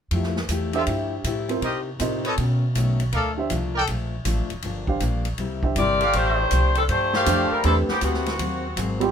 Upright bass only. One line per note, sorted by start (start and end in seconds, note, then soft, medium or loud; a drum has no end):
0.11 0.48 F2 medium
0.49 0.86 E2 medium
0.87 1.24 G2 medium
1.24 1.61 A2 medium
1.62 1.99 C3 medium
2.00 2.37 A2 medium
2.38 2.74 B2 medium
2.75 3.12 B1 medium
3.13 3.49 D2 medium
3.51 3.87 C2 medium
3.89 4.25 A#1 medium
4.25 4.40 A1 medium
4.38 4.50 F1 soft
4.51 4.62 D1 medium
4.63 5.00 G1 medium
5.01 5.37 A#1 medium
5.38 5.75 C2 medium
5.76 6.12 G1 medium
6.14 6.50 A1 medium
6.52 6.88 C2 medium
6.89 7.25 G2 medium
7.26 7.49 F2 medium
7.52 muted upright bass stroke soft
7.64 7.87 E2 medium
7.89 muted upright bass stroke soft
8.02 8.38 D2 medium
8.39 8.75 D#2 medium
8.76 9.11 G#1 medium